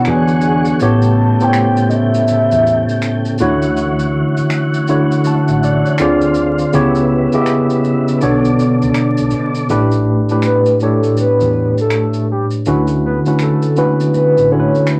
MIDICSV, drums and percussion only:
0, 0, Header, 1, 2, 480
1, 0, Start_track
1, 0, Tempo, 740741
1, 522, Time_signature, 4, 2, 24, 8
1, 9719, End_track
2, 0, Start_track
2, 0, Title_t, "Drums"
2, 32, Note_on_c, 9, 26, 60
2, 32, Note_on_c, 9, 82, 56
2, 97, Note_off_c, 9, 26, 0
2, 97, Note_off_c, 9, 82, 0
2, 179, Note_on_c, 9, 82, 41
2, 244, Note_off_c, 9, 82, 0
2, 267, Note_on_c, 9, 82, 48
2, 332, Note_off_c, 9, 82, 0
2, 422, Note_on_c, 9, 82, 51
2, 487, Note_off_c, 9, 82, 0
2, 517, Note_on_c, 9, 82, 59
2, 582, Note_off_c, 9, 82, 0
2, 660, Note_on_c, 9, 82, 45
2, 725, Note_off_c, 9, 82, 0
2, 909, Note_on_c, 9, 82, 39
2, 974, Note_off_c, 9, 82, 0
2, 992, Note_on_c, 9, 26, 67
2, 992, Note_on_c, 9, 82, 54
2, 1057, Note_off_c, 9, 26, 0
2, 1057, Note_off_c, 9, 82, 0
2, 1145, Note_on_c, 9, 82, 43
2, 1210, Note_off_c, 9, 82, 0
2, 1234, Note_on_c, 9, 82, 44
2, 1299, Note_off_c, 9, 82, 0
2, 1389, Note_on_c, 9, 82, 53
2, 1453, Note_off_c, 9, 82, 0
2, 1475, Note_on_c, 9, 82, 66
2, 1540, Note_off_c, 9, 82, 0
2, 1630, Note_on_c, 9, 82, 43
2, 1695, Note_off_c, 9, 82, 0
2, 1727, Note_on_c, 9, 82, 42
2, 1792, Note_off_c, 9, 82, 0
2, 1873, Note_on_c, 9, 82, 38
2, 1937, Note_off_c, 9, 82, 0
2, 1956, Note_on_c, 9, 26, 55
2, 1956, Note_on_c, 9, 82, 64
2, 2021, Note_off_c, 9, 26, 0
2, 2021, Note_off_c, 9, 82, 0
2, 2106, Note_on_c, 9, 82, 40
2, 2171, Note_off_c, 9, 82, 0
2, 2191, Note_on_c, 9, 82, 50
2, 2256, Note_off_c, 9, 82, 0
2, 2347, Note_on_c, 9, 82, 49
2, 2411, Note_off_c, 9, 82, 0
2, 2442, Note_on_c, 9, 82, 55
2, 2507, Note_off_c, 9, 82, 0
2, 2587, Note_on_c, 9, 82, 48
2, 2652, Note_off_c, 9, 82, 0
2, 2833, Note_on_c, 9, 82, 44
2, 2897, Note_off_c, 9, 82, 0
2, 2916, Note_on_c, 9, 26, 60
2, 2916, Note_on_c, 9, 82, 53
2, 2981, Note_off_c, 9, 26, 0
2, 2981, Note_off_c, 9, 82, 0
2, 3070, Note_on_c, 9, 82, 47
2, 3135, Note_off_c, 9, 82, 0
2, 3158, Note_on_c, 9, 82, 41
2, 3223, Note_off_c, 9, 82, 0
2, 3315, Note_on_c, 9, 82, 50
2, 3380, Note_off_c, 9, 82, 0
2, 3397, Note_on_c, 9, 82, 66
2, 3462, Note_off_c, 9, 82, 0
2, 3551, Note_on_c, 9, 82, 44
2, 3616, Note_off_c, 9, 82, 0
2, 3650, Note_on_c, 9, 82, 51
2, 3715, Note_off_c, 9, 82, 0
2, 3795, Note_on_c, 9, 82, 39
2, 3860, Note_off_c, 9, 82, 0
2, 3875, Note_on_c, 9, 26, 60
2, 3875, Note_on_c, 9, 82, 57
2, 3940, Note_off_c, 9, 26, 0
2, 3940, Note_off_c, 9, 82, 0
2, 4026, Note_on_c, 9, 82, 43
2, 4090, Note_off_c, 9, 82, 0
2, 4111, Note_on_c, 9, 82, 48
2, 4175, Note_off_c, 9, 82, 0
2, 4267, Note_on_c, 9, 82, 50
2, 4332, Note_off_c, 9, 82, 0
2, 4361, Note_on_c, 9, 82, 64
2, 4426, Note_off_c, 9, 82, 0
2, 4504, Note_on_c, 9, 82, 44
2, 4569, Note_off_c, 9, 82, 0
2, 4746, Note_on_c, 9, 82, 42
2, 4811, Note_off_c, 9, 82, 0
2, 4836, Note_on_c, 9, 26, 61
2, 4836, Note_on_c, 9, 82, 60
2, 4900, Note_off_c, 9, 26, 0
2, 4900, Note_off_c, 9, 82, 0
2, 4989, Note_on_c, 9, 82, 43
2, 5054, Note_off_c, 9, 82, 0
2, 5082, Note_on_c, 9, 82, 47
2, 5147, Note_off_c, 9, 82, 0
2, 5236, Note_on_c, 9, 82, 52
2, 5301, Note_off_c, 9, 82, 0
2, 5321, Note_on_c, 9, 82, 57
2, 5386, Note_off_c, 9, 82, 0
2, 5474, Note_on_c, 9, 82, 44
2, 5539, Note_off_c, 9, 82, 0
2, 5568, Note_on_c, 9, 82, 49
2, 5633, Note_off_c, 9, 82, 0
2, 5716, Note_on_c, 9, 82, 43
2, 5781, Note_off_c, 9, 82, 0
2, 5796, Note_on_c, 9, 26, 60
2, 5796, Note_on_c, 9, 82, 57
2, 5861, Note_off_c, 9, 26, 0
2, 5861, Note_off_c, 9, 82, 0
2, 5944, Note_on_c, 9, 82, 46
2, 6009, Note_off_c, 9, 82, 0
2, 6030, Note_on_c, 9, 82, 45
2, 6095, Note_off_c, 9, 82, 0
2, 6187, Note_on_c, 9, 82, 48
2, 6252, Note_off_c, 9, 82, 0
2, 6281, Note_on_c, 9, 82, 61
2, 6346, Note_off_c, 9, 82, 0
2, 6425, Note_on_c, 9, 82, 45
2, 6490, Note_off_c, 9, 82, 0
2, 6668, Note_on_c, 9, 82, 34
2, 6733, Note_off_c, 9, 82, 0
2, 6753, Note_on_c, 9, 26, 59
2, 6753, Note_on_c, 9, 82, 58
2, 6818, Note_off_c, 9, 26, 0
2, 6818, Note_off_c, 9, 82, 0
2, 6906, Note_on_c, 9, 82, 46
2, 6970, Note_off_c, 9, 82, 0
2, 6998, Note_on_c, 9, 82, 42
2, 7062, Note_off_c, 9, 82, 0
2, 7150, Note_on_c, 9, 82, 48
2, 7215, Note_off_c, 9, 82, 0
2, 7239, Note_on_c, 9, 82, 65
2, 7303, Note_off_c, 9, 82, 0
2, 7391, Note_on_c, 9, 82, 41
2, 7456, Note_off_c, 9, 82, 0
2, 7631, Note_on_c, 9, 82, 40
2, 7696, Note_off_c, 9, 82, 0
2, 7713, Note_on_c, 9, 26, 63
2, 7713, Note_on_c, 9, 82, 59
2, 7778, Note_off_c, 9, 26, 0
2, 7778, Note_off_c, 9, 82, 0
2, 7863, Note_on_c, 9, 82, 38
2, 7928, Note_off_c, 9, 82, 0
2, 8104, Note_on_c, 9, 82, 43
2, 8169, Note_off_c, 9, 82, 0
2, 8200, Note_on_c, 9, 82, 55
2, 8265, Note_off_c, 9, 82, 0
2, 8343, Note_on_c, 9, 82, 47
2, 8408, Note_off_c, 9, 82, 0
2, 8592, Note_on_c, 9, 82, 38
2, 8656, Note_off_c, 9, 82, 0
2, 8676, Note_on_c, 9, 26, 56
2, 8676, Note_on_c, 9, 82, 60
2, 8740, Note_off_c, 9, 26, 0
2, 8740, Note_off_c, 9, 82, 0
2, 8827, Note_on_c, 9, 82, 46
2, 8892, Note_off_c, 9, 82, 0
2, 8918, Note_on_c, 9, 82, 43
2, 8983, Note_off_c, 9, 82, 0
2, 9073, Note_on_c, 9, 82, 50
2, 9138, Note_off_c, 9, 82, 0
2, 9162, Note_on_c, 9, 82, 62
2, 9227, Note_off_c, 9, 82, 0
2, 9317, Note_on_c, 9, 82, 42
2, 9381, Note_off_c, 9, 82, 0
2, 9557, Note_on_c, 9, 82, 37
2, 9622, Note_off_c, 9, 82, 0
2, 9635, Note_on_c, 9, 26, 53
2, 9635, Note_on_c, 9, 82, 57
2, 9700, Note_off_c, 9, 26, 0
2, 9700, Note_off_c, 9, 82, 0
2, 9719, End_track
0, 0, End_of_file